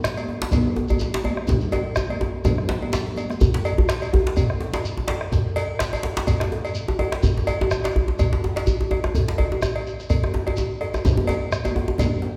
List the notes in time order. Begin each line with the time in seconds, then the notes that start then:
0.04 bombo rim, djembe slap, shekere
0.17 cowbell, high conga, shekere
0.28 bombo rim, high conga, djembe tone
0.41 djembe slap
0.51 bombo low, cowbell, djembe slap, high conga, djembe tone, low conga, djembe bass, shekere
0.65 high conga
0.76 djembe slap, djembe tone
0.88 cowbell, high conga, djembe bass, shekere
0.99 djembe tone, shekere
1.14 djembe slap, high conga
1.24 bombo rim, cowbell, high conga, djembe tone
1.37 bombo rim, high conga
1.47 bombo low, djembe slap, high conga, djembe tone, djembe bass, low conga, shekere
1.60 djembe slap, high conga, shekere
1.72 cowbell, djembe slap, djembe tone, shekere
1.85 bombo rim, djembe slap
1.96 bombo rim, djembe slap, djembe tone, high conga, shekere
2.10 cowbell, high conga
2.21 djembe slap, djembe tone, high conga
2.45 bombo rim, bombo low, cowbell, djembe slap, high conga, djembe tone, low conga, djembe bass, shekere
2.58 bombo rim, high conga
2.69 bombo rim, djembe slap, djembe tone
2.82 cowbell, high conga
2.93 bombo rim, djembe slap, djembe bass, low conga, shekere
3.06 djembe bass, low conga
3.16 cowbell, djembe slap, high conga, shekere
3.30 bombo rim, djembe slap, high conga, shekere
3.41 bombo low, djembe slap, djembe bass, shekere
3.54 djembe slap
3.65 cowbell, djembe tone, shekere
3.78 djembe bass
3.89 bombo rim, djembe slap, shekere
4.02 cowbell, shekere
4.13 bombo rim, djembe tone, djembe bass
4.27 djembe slap
4.37 bombo low, cowbell, djembe slap, djembe bass, shekere
4.50 bombo rim
4.61 djembe slap, djembe tone
4.74 cowbell, djembe slap, shekere
4.85 shekere
4.97 djembe tone
5.08 bombo rim, cowbell, djembe slap, djembe tone
5.21 bombo rim
5.32 bombo low, djembe slap, djembe tone, djembe bass, shekere
5.56 cowbell, djembe slap, djembe tone, shekere
5.79 bombo rim, djembe slap, shekere
5.93 cowbell, djembe tone, shekere
6.03 bombo rim, djembe slap, djembe tone
6.17 djembe slap
6.27 bombo low, cowbell, djembe slap, djembe tone, djembe bass, shekere
6.40 bombo rim, djembe slap
6.52 djembe slap, djembe tone
6.65 cowbell, shekere
6.75 shekere
6.88 djembe tone
6.99 bombo rim, cowbell, djembe tone
7.12 bombo rim, djembe slap
7.23 bombo low, djembe slap, djembe bass, shekere
7.37 djembe tone
7.47 cowbell, djembe tone, shekere
7.61 djembe tone
7.71 bombo rim, djembe tone, shekere
7.84 cowbell, djembe slap, shekere
7.96 bombo rim, djembe bass
8.08 djembe slap, djembe tone
8.19 bombo low, cowbell, djembe slap, djembe tone, djembe bass, shekere
8.33 djembe tone
8.44 djembe slap, djembe tone
8.56 cowbell, djembe slap, shekere
8.67 djembe bass, shekere
8.81 djembe tone
8.91 bombo rim, cowbell, djembe tone
9.04 bombo rim, djembe tone
9.15 bombo low, djembe tone, djembe bass, shekere
9.28 djembe slap
9.38 cowbell, djembe slap, djembe tone, djembe bass
9.52 djembe tone
9.62 bombo rim, djembe slap, djembe tone, shekere
9.76 bombo rim, cowbell
9.86 djembe slap, shekere
10.00 bombo rim, djembe slap, shekere
10.10 bombo rim, bombo low, cowbell, djembe bass, shekere
10.23 bombo rim, djembe tone
10.34 djembe slap, djembe tone
10.47 bombo rim, cowbell, djembe tone
10.57 djembe tone, shekere
10.81 cowbell, djembe slap, djembe tone
10.94 bombo rim, djembe tone, shekere
11.05 bombo low, djembe slap, djembe tone, low conga, djembe bass, shekere
11.17 high conga, djembe tone
11.27 cowbell, djembe slap, djembe tone, shekere
11.41 high conga
11.52 bombo rim, shekere
11.64 cowbell, high conga, djembe tone, shekere
11.75 bombo rim, high conga, djembe tone
11.88 djembe slap, djembe tone
11.98 bombo low, cowbell, djembe slap, high conga, djembe tone, low conga, djembe bass, shekere
12.12 high conga
12.22 djembe slap